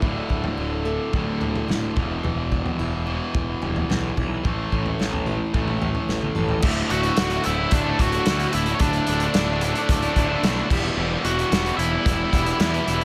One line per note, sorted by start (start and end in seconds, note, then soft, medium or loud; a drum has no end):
0.00 0.22 D1 medium
0.00 1.11 D2 medium
0.00 1.41 D2 medium
0.00 0.30 A2 medium
0.00 1.12 A2 medium
0.00 0.28 D3 medium
0.00 0.84 A3 medium
0.00 0.57 E4 medium
0.00 kick loud
0.00 floor tom medium
0.05 1.13 D3 medium
0.29 0.50 D1 medium
0.29 1.40 D3 medium
0.29 kick medium
0.44 floor tom medium
0.58 0.97 D1 medium
0.58 2.79 E4 medium
0.85 1.67 A3 medium
1.13 1.53 D1 medium
1.13 1.94 D2 medium
1.13 1.96 A2 medium
1.13 1.95 A2 medium
1.13 1.96 D3 medium
1.13 kick loud
1.13 floor tom medium
1.41 1.96 D3 medium
1.41 floor tom medium
1.56 floor tom medium
1.68 1.89 D1 medium
1.68 1.96 A3 medium
1.68 snare medium
1.68 floor tom medium
1.68 mid tom medium
1.95 2.16 E1 medium
1.95 3.05 E2 medium
1.95 2.22 E2 medium
1.95 3.06 B2 medium
1.95 3.05 E3 medium
1.95 kick loud
1.95 floor tom medium
1.95 mid tom medium
2.24 2.63 E1 medium
2.24 3.62 E2 medium
2.24 floor tom medium
2.52 3.61 G3 medium
2.52 kick medium
2.66 floor tom medium
2.79 3.19 E1 medium
2.79 4.17 E4 medium
3.06 4.16 E2 medium
3.06 4.16 B2 medium
3.06 4.46 E3 medium
3.06 3.88 B3 medium
3.34 3.54 E1 medium
3.34 5.54 E3 medium
3.34 kick loud
3.34 floor tom medium
3.62 3.82 E1 medium
3.62 4.45 G3 medium
3.62 floor tom medium
3.76 floor tom medium
3.90 4.09 B1 medium
3.90 4.45 B3 medium
3.90 snare medium
3.90 floor tom medium
3.90 mid tom medium
4.17 4.37 B1 medium
4.17 4.99 E4 medium
4.17 kick medium
4.17 floor tom medium
4.17 mid tom medium
4.43 4.64 A1 medium
4.43 5.52 A2 medium
4.43 5.82 A2 medium
4.43 5.53 E3 medium
4.43 5.54 A3 medium
4.43 kick loud
4.43 floor tom medium
4.72 4.92 A1 medium
4.72 5.80 C#4 medium
4.72 kick medium
4.86 floor tom medium
4.99 5.39 A1 medium
4.99 6.35 A4 medium
4.99 snare medium
5.13 floor tom medium
5.26 6.07 E4 medium
5.26 mid tom medium
5.53 5.93 A1 medium
5.53 6.61 A2 medium
5.53 6.62 E3 medium
5.53 6.64 A3 medium
5.53 6.63 A3 medium
5.53 kick loud
5.53 floor tom medium
5.68 mid tom medium
5.82 6.64 C#4 medium
5.82 floor tom medium
5.95 floor tom medium
6.09 6.28 A1 medium
6.09 6.63 E4 medium
6.09 snare soft
6.22 high tom medium
6.35 6.56 A1 medium
6.35 6.63 A4 medium
6.35 mid tom medium
6.49 floor tom medium
6.62 6.82 D1 medium
6.62 7.17 D2 loud
6.62 6.89 A2 loud
6.62 6.91 D3 medium
6.62 6.92 A3 loud
6.62 6.93 E4 loud
6.62 kick loud
6.62 crash loud
6.90 7.09 D1 medium
6.90 7.17 A2 medium
6.90 7.19 D3 medium
6.90 7.19 A3 medium
6.90 7.20 E4 medium
6.90 7.42 F#4 medium
6.90 7.45 F#5 loud
6.90 closed hi-hat medium
7.03 closed hi-hat soft
7.17 7.37 D1 medium
7.17 7.58 D2 medium
7.17 7.43 A2 loud
7.17 7.32 D3 loud
7.17 7.31 A3 loud
7.17 7.30 E4 loud
7.17 snare loud
7.17 closed hi-hat loud
7.30 7.44 D3 medium
7.30 7.45 A3 medium
7.30 7.47 E4 medium
7.30 closed hi-hat soft
7.44 7.64 D1 medium
7.44 7.85 A2 medium
7.44 7.60 D3 medium
7.44 7.59 A3 medium
7.44 7.71 E4 medium
7.44 7.58 E4 medium
7.44 7.71 E5 loud
7.44 muted distorted electric guitar stroke soft
7.44 closed hi-hat medium
7.58 7.87 D3 medium
7.58 7.86 A3 medium
7.58 7.85 E4 medium
7.71 7.90 D1 medium
7.71 7.98 D4 medium
7.71 8.00 D5 medium
7.71 kick loud
7.71 closed hi-hat loud
7.85 7.99 D3 medium
7.85 8.00 A3 medium
7.85 8.02 E4 medium
7.99 8.17 D1 loud
7.99 8.26 A2 medium
7.99 8.15 D3 medium
7.99 8.14 A3 medium
7.99 8.12 E4 medium
7.99 8.51 F#4 medium
7.99 8.54 F#5 medium
7.99 kick medium
7.99 closed hi-hat medium
8.12 8.27 D3 medium
8.12 8.27 A3 medium
8.12 8.29 E4 medium
8.12 closed hi-hat soft
8.26 8.78 D2 medium
8.26 8.45 D2 medium
8.26 8.52 A2 medium
8.26 8.54 D3 loud
8.26 8.55 A3 loud
8.26 8.57 E4 loud
8.26 snare loud
8.26 closed hi-hat loud
8.38 8.52 D3 medium
8.38 8.53 A3 medium
8.38 8.55 E4 medium
8.38 closed hi-hat medium
8.53 8.72 D1 medium
8.53 8.79 A2 medium
8.53 8.69 D3 medium
8.53 8.67 A3 medium
8.53 8.73 E4 medium
8.53 8.73 E5 medium
8.53 closed hi-hat medium
8.57 8.67 E4 medium
8.66 8.81 A3 medium
8.66 8.82 E4 medium
8.66 closed hi-hat soft
8.70 8.80 D3 medium
8.74 8.80 C#5 medium
8.79 8.99 D1 medium
8.79 9.33 D2 loud
8.79 9.06 A2 loud
8.79 9.07 D3 loud
8.79 9.08 A3 loud
8.79 10.66 D4 medium
8.79 9.10 E4 loud
8.79 10.66 D5 medium
8.79 kick loud
8.79 closed hi-hat loud
8.93 closed hi-hat soft
9.07 9.27 D1 medium
9.07 9.34 A2 medium
9.07 9.34 D3 medium
9.07 9.35 A3 medium
9.07 9.37 E4 medium
9.07 closed hi-hat medium
9.20 closed hi-hat soft
9.34 9.72 D1 medium
9.34 9.75 D2 loud
9.34 9.60 A2 loud
9.34 9.49 D3 loud
9.34 9.48 A3 loud
9.34 9.47 E4 loud
9.34 snare loud
9.34 closed hi-hat loud
9.47 9.61 D3 medium
9.47 9.63 A3 medium
9.47 9.64 E4 medium
9.61 10.02 A2 medium
9.61 9.77 D3 medium
9.61 9.75 A3 medium
9.61 9.74 E4 medium
9.61 muted distorted electric guitar stroke soft
9.61 closed hi-hat medium
9.75 10.04 D3 medium
9.75 10.02 A3 medium
9.75 10.01 E4 medium
9.75 closed hi-hat soft
9.89 10.07 D1 loud
9.89 kick loud
9.89 closed hi-hat loud
10.02 10.15 D3 medium
10.02 10.16 A3 medium
10.02 10.18 E4 medium
10.02 closed hi-hat medium
10.15 10.34 D1 loud
10.15 10.42 A2 medium
10.15 10.31 D3 medium
10.15 10.29 A3 medium
10.15 10.28 E4 medium
10.15 kick medium
10.15 closed hi-hat medium
10.29 10.43 D3 medium
10.29 10.44 A3 medium
10.29 10.45 E4 medium
10.42 10.61 B1 medium
10.42 10.68 D2 medium
10.42 10.69 A2 medium
10.42 10.69 D3 loud
10.42 10.69 A3 loud
10.42 10.72 E4 loud
10.42 snare loud
10.42 closed hi-hat loud
10.56 10.70 D3 medium
10.56 10.69 A3 medium
10.56 10.72 E4 medium
10.69 10.88 E1 medium
10.69 10.97 E2 loud
10.69 10.97 B2 loud
10.69 10.86 E3 loud
10.69 10.85 G3 loud
10.69 10.84 B3 loud
10.69 10.83 E4 loud
10.69 kick loud
10.69 crash loud
10.83 10.98 E3 medium
10.83 10.98 G3 medium
10.83 10.99 B3 medium
10.83 11.00 E4 medium
10.97 11.15 E1 loud
10.97 11.49 E2 loud
10.97 11.50 B2 medium
10.97 11.23 E3 loud
10.97 11.25 G3 loud
10.97 11.26 B3 loud
10.97 11.27 E4 loud
11.24 11.43 E1 medium
11.24 11.51 E3 medium
11.24 11.52 G3 medium
11.24 11.52 B3 medium
11.24 11.53 E4 medium
11.24 11.75 F#4 medium
11.24 11.75 F#5 loud
11.24 closed hi-hat medium
11.39 closed hi-hat soft
11.50 11.70 E1 medium
11.50 12.58 E2 loud
11.50 11.92 B2 loud
11.50 11.67 E3 loud
11.50 11.66 G3 loud
11.50 11.65 B3 loud
11.50 11.63 E4 loud
11.50 snare loud
11.50 closed hi-hat medium
11.64 11.76 E3 medium
11.64 11.78 G3 medium
11.64 11.79 B3 medium
11.64 11.80 E4 medium
11.64 closed hi-hat soft
11.77 11.96 E1 medium
11.77 11.94 E3 medium
11.77 11.92 G3 medium
11.77 11.91 B3 medium
11.77 13.04 E4 medium
11.77 13.04 E5 loud
11.77 muted distorted electric guitar stroke soft
11.77 closed hi-hat medium
11.81 11.91 E4 medium
11.91 12.20 E3 medium
11.91 12.19 G3 medium
11.91 12.18 B3 medium
11.91 12.17 E4 medium
12.06 12.24 E1 medium
12.06 kick loud
12.06 closed hi-hat loud
12.18 12.31 E3 medium
12.18 12.32 G3 medium
12.18 12.32 B3 medium
12.18 12.34 E4 medium
12.31 12.51 E1 loud
12.31 12.48 E3 medium
12.31 12.46 G3 medium
12.31 12.45 B3 medium
12.31 12.45 E4 medium
12.31 kick medium
12.31 closed hi-hat medium
12.45 12.60 E3 medium
12.45 12.59 G3 medium
12.45 12.60 B3 medium
12.45 12.61 E4 medium
12.45 closed hi-hat soft
12.58 13.04 E2 medium
12.58 12.78 E2 loud
12.58 13.04 B2 medium
12.58 12.85 E3 loud
12.58 12.85 G3 medium
12.58 12.87 B3 loud
12.58 12.88 E4 loud
12.58 snare loud
12.58 closed hi-hat loud
12.74 12.87 E3 medium
12.74 12.86 G3 medium
12.74 12.88 B3 medium
12.74 12.90 E4 medium
12.74 closed hi-hat soft
12.85 13.04 E1 medium
12.85 13.02 E3 medium
12.85 13.00 G3 medium
12.85 12.99 B3 medium
12.85 12.98 E4 medium
12.85 closed hi-hat medium
12.99 13.04 B3 medium
12.99 13.04 E4 medium